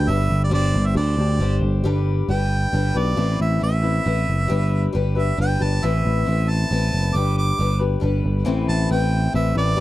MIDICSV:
0, 0, Header, 1, 4, 480
1, 0, Start_track
1, 0, Key_signature, 0, "minor"
1, 0, Tempo, 441176
1, 557, Time_signature, 3, 2, 24, 8
1, 10666, End_track
2, 0, Start_track
2, 0, Title_t, "Harmonica"
2, 0, Program_c, 0, 22
2, 0, Note_on_c, 0, 79, 100
2, 96, Note_on_c, 0, 76, 98
2, 112, Note_off_c, 0, 79, 0
2, 446, Note_off_c, 0, 76, 0
2, 476, Note_on_c, 0, 74, 76
2, 570, Note_off_c, 0, 74, 0
2, 586, Note_on_c, 0, 74, 98
2, 944, Note_on_c, 0, 76, 79
2, 960, Note_off_c, 0, 74, 0
2, 1050, Note_off_c, 0, 76, 0
2, 1055, Note_on_c, 0, 74, 75
2, 1722, Note_off_c, 0, 74, 0
2, 2507, Note_on_c, 0, 79, 80
2, 3237, Note_on_c, 0, 74, 85
2, 3253, Note_off_c, 0, 79, 0
2, 3685, Note_off_c, 0, 74, 0
2, 3716, Note_on_c, 0, 76, 80
2, 3932, Note_off_c, 0, 76, 0
2, 3956, Note_on_c, 0, 76, 94
2, 5339, Note_off_c, 0, 76, 0
2, 5639, Note_on_c, 0, 76, 83
2, 5856, Note_off_c, 0, 76, 0
2, 5886, Note_on_c, 0, 79, 85
2, 6126, Note_on_c, 0, 81, 81
2, 6142, Note_off_c, 0, 79, 0
2, 6370, Note_on_c, 0, 76, 83
2, 6387, Note_off_c, 0, 81, 0
2, 7072, Note_on_c, 0, 81, 84
2, 7088, Note_off_c, 0, 76, 0
2, 7786, Note_on_c, 0, 86, 81
2, 7803, Note_off_c, 0, 81, 0
2, 8009, Note_off_c, 0, 86, 0
2, 8028, Note_on_c, 0, 86, 89
2, 8482, Note_off_c, 0, 86, 0
2, 9456, Note_on_c, 0, 81, 88
2, 9681, Note_off_c, 0, 81, 0
2, 9699, Note_on_c, 0, 79, 87
2, 10154, Note_off_c, 0, 79, 0
2, 10174, Note_on_c, 0, 76, 86
2, 10399, Note_off_c, 0, 76, 0
2, 10423, Note_on_c, 0, 74, 110
2, 10666, Note_off_c, 0, 74, 0
2, 10666, End_track
3, 0, Start_track
3, 0, Title_t, "Steel-string acoustic guitar"
3, 0, Program_c, 1, 25
3, 88, Note_on_c, 1, 55, 69
3, 94, Note_on_c, 1, 62, 67
3, 103, Note_on_c, 1, 67, 62
3, 119, Note_on_c, 1, 71, 68
3, 537, Note_off_c, 1, 55, 0
3, 541, Note_on_c, 1, 55, 80
3, 549, Note_off_c, 1, 62, 0
3, 554, Note_on_c, 1, 62, 88
3, 559, Note_off_c, 1, 67, 0
3, 561, Note_off_c, 1, 71, 0
3, 563, Note_on_c, 1, 67, 83
3, 565, Note_on_c, 1, 72, 87
3, 1020, Note_off_c, 1, 55, 0
3, 1033, Note_on_c, 1, 55, 58
3, 1035, Note_off_c, 1, 62, 0
3, 1040, Note_off_c, 1, 67, 0
3, 1041, Note_off_c, 1, 72, 0
3, 1046, Note_on_c, 1, 62, 64
3, 1054, Note_on_c, 1, 67, 62
3, 1067, Note_on_c, 1, 72, 72
3, 1266, Note_off_c, 1, 72, 0
3, 1275, Note_off_c, 1, 55, 0
3, 1279, Note_on_c, 1, 72, 43
3, 1281, Note_off_c, 1, 62, 0
3, 1285, Note_off_c, 1, 67, 0
3, 1298, Note_on_c, 1, 67, 47
3, 1304, Note_on_c, 1, 62, 44
3, 1513, Note_off_c, 1, 62, 0
3, 1516, Note_on_c, 1, 55, 62
3, 1518, Note_off_c, 1, 72, 0
3, 1522, Note_off_c, 1, 67, 0
3, 1526, Note_on_c, 1, 62, 67
3, 1535, Note_on_c, 1, 67, 76
3, 1543, Note_on_c, 1, 72, 69
3, 1985, Note_off_c, 1, 55, 0
3, 1998, Note_on_c, 1, 55, 92
3, 2001, Note_off_c, 1, 67, 0
3, 2002, Note_off_c, 1, 62, 0
3, 2011, Note_off_c, 1, 72, 0
3, 2013, Note_on_c, 1, 62, 83
3, 2014, Note_on_c, 1, 67, 86
3, 2021, Note_on_c, 1, 71, 90
3, 2474, Note_off_c, 1, 55, 0
3, 2477, Note_off_c, 1, 62, 0
3, 2486, Note_off_c, 1, 67, 0
3, 2487, Note_on_c, 1, 55, 56
3, 2490, Note_on_c, 1, 62, 59
3, 2504, Note_on_c, 1, 67, 60
3, 2507, Note_off_c, 1, 71, 0
3, 2512, Note_on_c, 1, 71, 64
3, 2950, Note_off_c, 1, 55, 0
3, 2958, Note_off_c, 1, 62, 0
3, 2963, Note_on_c, 1, 55, 61
3, 2968, Note_off_c, 1, 67, 0
3, 2971, Note_on_c, 1, 62, 56
3, 2981, Note_on_c, 1, 67, 58
3, 2989, Note_off_c, 1, 71, 0
3, 2993, Note_on_c, 1, 71, 64
3, 3189, Note_off_c, 1, 71, 0
3, 3202, Note_off_c, 1, 55, 0
3, 3202, Note_on_c, 1, 71, 43
3, 3206, Note_off_c, 1, 62, 0
3, 3210, Note_off_c, 1, 67, 0
3, 3223, Note_on_c, 1, 67, 42
3, 3230, Note_on_c, 1, 62, 39
3, 3439, Note_on_c, 1, 52, 77
3, 3441, Note_off_c, 1, 71, 0
3, 3441, Note_on_c, 1, 45, 72
3, 3448, Note_off_c, 1, 62, 0
3, 3449, Note_off_c, 1, 67, 0
3, 3451, Note_on_c, 1, 57, 82
3, 3452, Note_on_c, 1, 60, 90
3, 3453, Note_on_c, 1, 64, 84
3, 3462, Note_on_c, 1, 71, 75
3, 3902, Note_off_c, 1, 57, 0
3, 3915, Note_on_c, 1, 57, 56
3, 3916, Note_off_c, 1, 60, 0
3, 3921, Note_off_c, 1, 52, 0
3, 3922, Note_off_c, 1, 45, 0
3, 3928, Note_off_c, 1, 64, 0
3, 3929, Note_on_c, 1, 60, 55
3, 3939, Note_off_c, 1, 71, 0
3, 3940, Note_on_c, 1, 64, 63
3, 3944, Note_on_c, 1, 71, 62
3, 4145, Note_off_c, 1, 71, 0
3, 4152, Note_off_c, 1, 64, 0
3, 4158, Note_on_c, 1, 71, 45
3, 4159, Note_off_c, 1, 57, 0
3, 4165, Note_on_c, 1, 64, 44
3, 4166, Note_off_c, 1, 60, 0
3, 4177, Note_on_c, 1, 60, 42
3, 4179, Note_on_c, 1, 57, 41
3, 4374, Note_off_c, 1, 57, 0
3, 4387, Note_off_c, 1, 60, 0
3, 4387, Note_on_c, 1, 57, 56
3, 4397, Note_off_c, 1, 64, 0
3, 4400, Note_off_c, 1, 71, 0
3, 4400, Note_on_c, 1, 60, 63
3, 4410, Note_on_c, 1, 64, 65
3, 4421, Note_on_c, 1, 71, 68
3, 4869, Note_off_c, 1, 57, 0
3, 4873, Note_on_c, 1, 55, 90
3, 4882, Note_off_c, 1, 60, 0
3, 4886, Note_off_c, 1, 64, 0
3, 4888, Note_on_c, 1, 62, 80
3, 4889, Note_off_c, 1, 71, 0
3, 4890, Note_on_c, 1, 67, 84
3, 4893, Note_on_c, 1, 71, 109
3, 5346, Note_off_c, 1, 55, 0
3, 5350, Note_off_c, 1, 62, 0
3, 5359, Note_on_c, 1, 55, 64
3, 5363, Note_on_c, 1, 62, 69
3, 5368, Note_off_c, 1, 67, 0
3, 5377, Note_off_c, 1, 71, 0
3, 5382, Note_on_c, 1, 71, 75
3, 5385, Note_on_c, 1, 67, 78
3, 5590, Note_off_c, 1, 71, 0
3, 5602, Note_off_c, 1, 55, 0
3, 5603, Note_on_c, 1, 71, 50
3, 5604, Note_off_c, 1, 62, 0
3, 5605, Note_off_c, 1, 67, 0
3, 5618, Note_on_c, 1, 67, 38
3, 5623, Note_on_c, 1, 62, 41
3, 5836, Note_off_c, 1, 62, 0
3, 5838, Note_on_c, 1, 55, 62
3, 5842, Note_off_c, 1, 67, 0
3, 5844, Note_off_c, 1, 71, 0
3, 5849, Note_on_c, 1, 62, 61
3, 5855, Note_on_c, 1, 67, 66
3, 5871, Note_on_c, 1, 71, 73
3, 6074, Note_off_c, 1, 71, 0
3, 6082, Note_off_c, 1, 55, 0
3, 6082, Note_off_c, 1, 67, 0
3, 6087, Note_off_c, 1, 62, 0
3, 6087, Note_on_c, 1, 71, 42
3, 6095, Note_on_c, 1, 67, 45
3, 6112, Note_on_c, 1, 62, 40
3, 6326, Note_off_c, 1, 71, 0
3, 6330, Note_off_c, 1, 67, 0
3, 6335, Note_on_c, 1, 45, 76
3, 6339, Note_off_c, 1, 62, 0
3, 6339, Note_on_c, 1, 52, 90
3, 6344, Note_on_c, 1, 57, 76
3, 6346, Note_on_c, 1, 60, 80
3, 6352, Note_on_c, 1, 64, 81
3, 6354, Note_on_c, 1, 71, 83
3, 6784, Note_off_c, 1, 57, 0
3, 6797, Note_on_c, 1, 57, 60
3, 6800, Note_off_c, 1, 60, 0
3, 6807, Note_off_c, 1, 64, 0
3, 6811, Note_off_c, 1, 45, 0
3, 6813, Note_off_c, 1, 52, 0
3, 6813, Note_on_c, 1, 60, 65
3, 6820, Note_on_c, 1, 64, 67
3, 6827, Note_off_c, 1, 71, 0
3, 6831, Note_on_c, 1, 71, 69
3, 7282, Note_off_c, 1, 57, 0
3, 7289, Note_off_c, 1, 60, 0
3, 7293, Note_off_c, 1, 64, 0
3, 7295, Note_on_c, 1, 57, 61
3, 7306, Note_on_c, 1, 60, 63
3, 7318, Note_off_c, 1, 71, 0
3, 7318, Note_on_c, 1, 64, 63
3, 7322, Note_on_c, 1, 71, 61
3, 7770, Note_off_c, 1, 57, 0
3, 7776, Note_off_c, 1, 60, 0
3, 7780, Note_on_c, 1, 55, 79
3, 7782, Note_off_c, 1, 64, 0
3, 7790, Note_off_c, 1, 71, 0
3, 7792, Note_on_c, 1, 62, 74
3, 7794, Note_on_c, 1, 71, 81
3, 7796, Note_on_c, 1, 67, 80
3, 8236, Note_off_c, 1, 55, 0
3, 8249, Note_on_c, 1, 55, 58
3, 8254, Note_off_c, 1, 67, 0
3, 8255, Note_off_c, 1, 62, 0
3, 8267, Note_on_c, 1, 67, 64
3, 8268, Note_on_c, 1, 62, 64
3, 8278, Note_off_c, 1, 71, 0
3, 8282, Note_on_c, 1, 71, 64
3, 8467, Note_off_c, 1, 71, 0
3, 8480, Note_on_c, 1, 71, 49
3, 8484, Note_off_c, 1, 67, 0
3, 8487, Note_off_c, 1, 55, 0
3, 8496, Note_off_c, 1, 62, 0
3, 8497, Note_on_c, 1, 67, 44
3, 8511, Note_on_c, 1, 62, 35
3, 8702, Note_on_c, 1, 55, 67
3, 8703, Note_off_c, 1, 62, 0
3, 8716, Note_on_c, 1, 62, 72
3, 8718, Note_off_c, 1, 67, 0
3, 8722, Note_off_c, 1, 71, 0
3, 8731, Note_on_c, 1, 67, 68
3, 8737, Note_on_c, 1, 71, 68
3, 9191, Note_on_c, 1, 52, 98
3, 9192, Note_off_c, 1, 55, 0
3, 9193, Note_on_c, 1, 45, 75
3, 9197, Note_off_c, 1, 62, 0
3, 9201, Note_on_c, 1, 60, 95
3, 9203, Note_on_c, 1, 57, 81
3, 9204, Note_off_c, 1, 67, 0
3, 9208, Note_on_c, 1, 64, 93
3, 9210, Note_off_c, 1, 71, 0
3, 9214, Note_on_c, 1, 71, 94
3, 9662, Note_off_c, 1, 57, 0
3, 9675, Note_off_c, 1, 60, 0
3, 9675, Note_on_c, 1, 57, 69
3, 9676, Note_off_c, 1, 52, 0
3, 9676, Note_off_c, 1, 64, 0
3, 9677, Note_off_c, 1, 45, 0
3, 9688, Note_on_c, 1, 60, 67
3, 9689, Note_on_c, 1, 64, 64
3, 9698, Note_off_c, 1, 71, 0
3, 9703, Note_on_c, 1, 71, 72
3, 10136, Note_off_c, 1, 57, 0
3, 10144, Note_off_c, 1, 60, 0
3, 10149, Note_on_c, 1, 57, 58
3, 10157, Note_on_c, 1, 60, 65
3, 10158, Note_off_c, 1, 64, 0
3, 10168, Note_off_c, 1, 71, 0
3, 10172, Note_on_c, 1, 64, 68
3, 10172, Note_on_c, 1, 71, 66
3, 10377, Note_off_c, 1, 71, 0
3, 10386, Note_off_c, 1, 64, 0
3, 10390, Note_on_c, 1, 71, 42
3, 10393, Note_off_c, 1, 57, 0
3, 10397, Note_off_c, 1, 60, 0
3, 10399, Note_on_c, 1, 64, 42
3, 10412, Note_on_c, 1, 60, 43
3, 10418, Note_on_c, 1, 57, 36
3, 10612, Note_off_c, 1, 57, 0
3, 10616, Note_on_c, 1, 55, 85
3, 10624, Note_off_c, 1, 60, 0
3, 10625, Note_off_c, 1, 71, 0
3, 10626, Note_off_c, 1, 64, 0
3, 10628, Note_on_c, 1, 62, 94
3, 10631, Note_on_c, 1, 67, 80
3, 10666, Note_off_c, 1, 55, 0
3, 10666, Note_off_c, 1, 62, 0
3, 10666, Note_off_c, 1, 67, 0
3, 10666, End_track
4, 0, Start_track
4, 0, Title_t, "Picked electric bass"
4, 0, Program_c, 2, 34
4, 84, Note_on_c, 2, 31, 94
4, 310, Note_off_c, 2, 31, 0
4, 330, Note_on_c, 2, 31, 93
4, 553, Note_off_c, 2, 31, 0
4, 566, Note_on_c, 2, 31, 96
4, 791, Note_off_c, 2, 31, 0
4, 808, Note_on_c, 2, 31, 97
4, 1032, Note_off_c, 2, 31, 0
4, 1038, Note_on_c, 2, 38, 89
4, 1267, Note_off_c, 2, 38, 0
4, 1277, Note_on_c, 2, 38, 87
4, 1506, Note_off_c, 2, 38, 0
4, 1515, Note_on_c, 2, 31, 86
4, 1745, Note_off_c, 2, 31, 0
4, 1753, Note_on_c, 2, 31, 85
4, 1984, Note_off_c, 2, 31, 0
4, 2006, Note_on_c, 2, 31, 81
4, 2408, Note_off_c, 2, 31, 0
4, 2487, Note_on_c, 2, 31, 88
4, 2888, Note_off_c, 2, 31, 0
4, 2969, Note_on_c, 2, 31, 89
4, 3167, Note_off_c, 2, 31, 0
4, 3214, Note_on_c, 2, 35, 83
4, 3410, Note_off_c, 2, 35, 0
4, 3453, Note_on_c, 2, 33, 80
4, 3650, Note_off_c, 2, 33, 0
4, 3697, Note_on_c, 2, 33, 84
4, 3893, Note_off_c, 2, 33, 0
4, 3938, Note_on_c, 2, 33, 87
4, 4336, Note_off_c, 2, 33, 0
4, 4419, Note_on_c, 2, 33, 89
4, 4615, Note_off_c, 2, 33, 0
4, 4655, Note_on_c, 2, 30, 81
4, 4852, Note_off_c, 2, 30, 0
4, 4897, Note_on_c, 2, 31, 87
4, 5296, Note_off_c, 2, 31, 0
4, 5384, Note_on_c, 2, 31, 79
4, 5781, Note_off_c, 2, 31, 0
4, 5855, Note_on_c, 2, 31, 90
4, 6054, Note_off_c, 2, 31, 0
4, 6101, Note_on_c, 2, 31, 80
4, 6297, Note_off_c, 2, 31, 0
4, 6351, Note_on_c, 2, 33, 81
4, 6543, Note_off_c, 2, 33, 0
4, 6587, Note_on_c, 2, 33, 88
4, 6780, Note_off_c, 2, 33, 0
4, 6829, Note_on_c, 2, 33, 78
4, 7224, Note_off_c, 2, 33, 0
4, 7301, Note_on_c, 2, 33, 82
4, 7497, Note_off_c, 2, 33, 0
4, 7535, Note_on_c, 2, 30, 79
4, 7733, Note_off_c, 2, 30, 0
4, 7774, Note_on_c, 2, 31, 85
4, 8175, Note_off_c, 2, 31, 0
4, 8260, Note_on_c, 2, 31, 81
4, 8658, Note_off_c, 2, 31, 0
4, 8729, Note_on_c, 2, 31, 90
4, 8929, Note_off_c, 2, 31, 0
4, 8969, Note_on_c, 2, 31, 83
4, 9168, Note_off_c, 2, 31, 0
4, 9208, Note_on_c, 2, 33, 87
4, 9408, Note_off_c, 2, 33, 0
4, 9442, Note_on_c, 2, 33, 88
4, 9644, Note_off_c, 2, 33, 0
4, 9679, Note_on_c, 2, 33, 90
4, 10083, Note_off_c, 2, 33, 0
4, 10165, Note_on_c, 2, 33, 95
4, 10364, Note_off_c, 2, 33, 0
4, 10394, Note_on_c, 2, 33, 84
4, 10597, Note_off_c, 2, 33, 0
4, 10631, Note_on_c, 2, 31, 89
4, 10666, Note_off_c, 2, 31, 0
4, 10666, End_track
0, 0, End_of_file